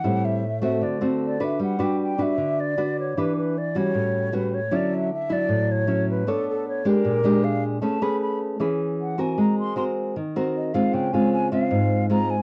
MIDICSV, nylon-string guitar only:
0, 0, Header, 1, 2, 480
1, 0, Start_track
1, 0, Tempo, 389105
1, 47, Time_signature, 4, 2, 24, 8
1, 15323, End_track
2, 0, Start_track
2, 0, Title_t, "Nylon-string guitar"
2, 0, Program_c, 0, 24
2, 47, Note_on_c, 0, 45, 62
2, 47, Note_on_c, 0, 55, 49
2, 50, Note_on_c, 0, 60, 51
2, 57, Note_on_c, 0, 64, 57
2, 524, Note_off_c, 0, 55, 0
2, 527, Note_off_c, 0, 60, 0
2, 528, Note_off_c, 0, 64, 0
2, 759, Note_on_c, 0, 57, 58
2, 767, Note_on_c, 0, 60, 62
2, 774, Note_on_c, 0, 66, 63
2, 984, Note_off_c, 0, 45, 0
2, 1003, Note_on_c, 0, 50, 59
2, 1206, Note_off_c, 0, 57, 0
2, 1208, Note_off_c, 0, 60, 0
2, 1213, Note_off_c, 0, 66, 0
2, 1244, Note_on_c, 0, 57, 59
2, 1252, Note_on_c, 0, 60, 61
2, 1255, Note_on_c, 0, 66, 61
2, 1688, Note_off_c, 0, 57, 0
2, 1691, Note_off_c, 0, 60, 0
2, 1694, Note_off_c, 0, 66, 0
2, 1726, Note_on_c, 0, 62, 61
2, 1731, Note_on_c, 0, 66, 54
2, 1735, Note_on_c, 0, 71, 61
2, 1942, Note_off_c, 0, 50, 0
2, 1966, Note_on_c, 0, 55, 61
2, 2193, Note_off_c, 0, 62, 0
2, 2197, Note_off_c, 0, 66, 0
2, 2202, Note_off_c, 0, 71, 0
2, 2205, Note_on_c, 0, 62, 66
2, 2217, Note_on_c, 0, 66, 61
2, 2217, Note_on_c, 0, 71, 61
2, 2650, Note_off_c, 0, 62, 0
2, 2652, Note_off_c, 0, 66, 0
2, 2655, Note_off_c, 0, 71, 0
2, 2693, Note_on_c, 0, 62, 56
2, 2702, Note_on_c, 0, 66, 53
2, 2702, Note_on_c, 0, 71, 66
2, 2904, Note_off_c, 0, 55, 0
2, 2930, Note_on_c, 0, 50, 62
2, 3374, Note_off_c, 0, 62, 0
2, 3376, Note_off_c, 0, 66, 0
2, 3377, Note_off_c, 0, 71, 0
2, 3423, Note_on_c, 0, 62, 57
2, 3426, Note_on_c, 0, 66, 56
2, 3431, Note_on_c, 0, 71, 58
2, 3858, Note_off_c, 0, 62, 0
2, 3858, Note_off_c, 0, 66, 0
2, 3862, Note_off_c, 0, 71, 0
2, 3866, Note_off_c, 0, 50, 0
2, 3915, Note_on_c, 0, 52, 65
2, 3918, Note_on_c, 0, 62, 55
2, 3923, Note_on_c, 0, 67, 57
2, 3926, Note_on_c, 0, 71, 64
2, 4379, Note_off_c, 0, 62, 0
2, 4383, Note_off_c, 0, 71, 0
2, 4384, Note_off_c, 0, 67, 0
2, 4627, Note_on_c, 0, 55, 57
2, 4634, Note_on_c, 0, 61, 57
2, 4637, Note_on_c, 0, 66, 67
2, 4839, Note_off_c, 0, 52, 0
2, 4864, Note_on_c, 0, 45, 65
2, 5301, Note_off_c, 0, 55, 0
2, 5302, Note_off_c, 0, 61, 0
2, 5305, Note_off_c, 0, 66, 0
2, 5335, Note_on_c, 0, 55, 52
2, 5341, Note_on_c, 0, 61, 57
2, 5345, Note_on_c, 0, 66, 64
2, 5655, Note_off_c, 0, 55, 0
2, 5656, Note_off_c, 0, 61, 0
2, 5659, Note_off_c, 0, 66, 0
2, 5792, Note_off_c, 0, 45, 0
2, 5813, Note_on_c, 0, 50, 61
2, 5817, Note_on_c, 0, 54, 58
2, 5823, Note_on_c, 0, 61, 56
2, 5833, Note_on_c, 0, 64, 64
2, 6289, Note_off_c, 0, 54, 0
2, 6294, Note_off_c, 0, 61, 0
2, 6296, Note_off_c, 0, 64, 0
2, 6532, Note_on_c, 0, 54, 59
2, 6539, Note_on_c, 0, 64, 71
2, 6747, Note_off_c, 0, 50, 0
2, 6767, Note_on_c, 0, 45, 67
2, 7212, Note_off_c, 0, 54, 0
2, 7215, Note_off_c, 0, 64, 0
2, 7243, Note_on_c, 0, 54, 59
2, 7250, Note_on_c, 0, 61, 53
2, 7252, Note_on_c, 0, 64, 58
2, 7688, Note_off_c, 0, 54, 0
2, 7689, Note_off_c, 0, 61, 0
2, 7692, Note_off_c, 0, 64, 0
2, 7704, Note_off_c, 0, 45, 0
2, 7733, Note_on_c, 0, 59, 65
2, 7739, Note_on_c, 0, 62, 53
2, 7744, Note_on_c, 0, 69, 56
2, 7747, Note_on_c, 0, 73, 61
2, 8415, Note_off_c, 0, 62, 0
2, 8418, Note_off_c, 0, 69, 0
2, 8418, Note_off_c, 0, 73, 0
2, 8444, Note_off_c, 0, 59, 0
2, 8449, Note_on_c, 0, 56, 60
2, 8457, Note_on_c, 0, 62, 63
2, 8462, Note_on_c, 0, 67, 61
2, 8691, Note_on_c, 0, 46, 66
2, 8890, Note_off_c, 0, 56, 0
2, 8892, Note_off_c, 0, 62, 0
2, 8897, Note_off_c, 0, 67, 0
2, 8928, Note_on_c, 0, 56, 62
2, 8938, Note_on_c, 0, 62, 67
2, 8944, Note_on_c, 0, 67, 68
2, 9609, Note_off_c, 0, 56, 0
2, 9615, Note_off_c, 0, 62, 0
2, 9617, Note_off_c, 0, 67, 0
2, 9625, Note_off_c, 0, 46, 0
2, 9641, Note_on_c, 0, 57, 60
2, 9645, Note_on_c, 0, 61, 51
2, 9649, Note_on_c, 0, 68, 57
2, 9657, Note_on_c, 0, 71, 62
2, 9846, Note_off_c, 0, 61, 0
2, 9850, Note_off_c, 0, 68, 0
2, 9854, Note_off_c, 0, 71, 0
2, 9890, Note_on_c, 0, 61, 62
2, 9890, Note_on_c, 0, 68, 63
2, 9896, Note_on_c, 0, 71, 68
2, 10570, Note_off_c, 0, 61, 0
2, 10570, Note_off_c, 0, 68, 0
2, 10571, Note_off_c, 0, 71, 0
2, 10580, Note_off_c, 0, 57, 0
2, 10603, Note_on_c, 0, 52, 67
2, 10607, Note_on_c, 0, 61, 50
2, 10612, Note_on_c, 0, 68, 54
2, 10621, Note_on_c, 0, 71, 60
2, 11286, Note_off_c, 0, 61, 0
2, 11291, Note_off_c, 0, 68, 0
2, 11295, Note_off_c, 0, 71, 0
2, 11323, Note_on_c, 0, 60, 61
2, 11330, Note_on_c, 0, 66, 61
2, 11338, Note_on_c, 0, 70, 60
2, 11541, Note_off_c, 0, 52, 0
2, 11568, Note_on_c, 0, 56, 65
2, 12006, Note_off_c, 0, 60, 0
2, 12010, Note_off_c, 0, 66, 0
2, 12012, Note_off_c, 0, 70, 0
2, 12037, Note_on_c, 0, 60, 55
2, 12047, Note_on_c, 0, 66, 55
2, 12055, Note_on_c, 0, 70, 60
2, 12503, Note_off_c, 0, 56, 0
2, 12519, Note_off_c, 0, 60, 0
2, 12524, Note_off_c, 0, 66, 0
2, 12528, Note_off_c, 0, 70, 0
2, 12534, Note_on_c, 0, 51, 61
2, 12778, Note_on_c, 0, 60, 63
2, 12783, Note_on_c, 0, 66, 62
2, 12789, Note_on_c, 0, 70, 68
2, 13213, Note_off_c, 0, 60, 0
2, 13216, Note_off_c, 0, 66, 0
2, 13218, Note_off_c, 0, 70, 0
2, 13250, Note_on_c, 0, 56, 64
2, 13259, Note_on_c, 0, 60, 60
2, 13261, Note_on_c, 0, 65, 69
2, 13465, Note_off_c, 0, 51, 0
2, 13490, Note_on_c, 0, 49, 65
2, 13690, Note_off_c, 0, 56, 0
2, 13692, Note_off_c, 0, 60, 0
2, 13695, Note_off_c, 0, 65, 0
2, 13736, Note_on_c, 0, 56, 58
2, 13746, Note_on_c, 0, 60, 68
2, 13747, Note_on_c, 0, 65, 76
2, 14172, Note_off_c, 0, 56, 0
2, 14177, Note_off_c, 0, 60, 0
2, 14177, Note_off_c, 0, 65, 0
2, 14210, Note_on_c, 0, 56, 53
2, 14212, Note_on_c, 0, 60, 60
2, 14220, Note_on_c, 0, 65, 63
2, 14423, Note_off_c, 0, 49, 0
2, 14444, Note_on_c, 0, 44, 69
2, 14887, Note_off_c, 0, 60, 0
2, 14889, Note_off_c, 0, 56, 0
2, 14894, Note_off_c, 0, 65, 0
2, 14923, Note_on_c, 0, 56, 56
2, 14927, Note_on_c, 0, 60, 53
2, 14936, Note_on_c, 0, 65, 64
2, 15232, Note_off_c, 0, 56, 0
2, 15235, Note_off_c, 0, 60, 0
2, 15238, Note_off_c, 0, 65, 0
2, 15323, Note_off_c, 0, 44, 0
2, 15323, End_track
0, 0, End_of_file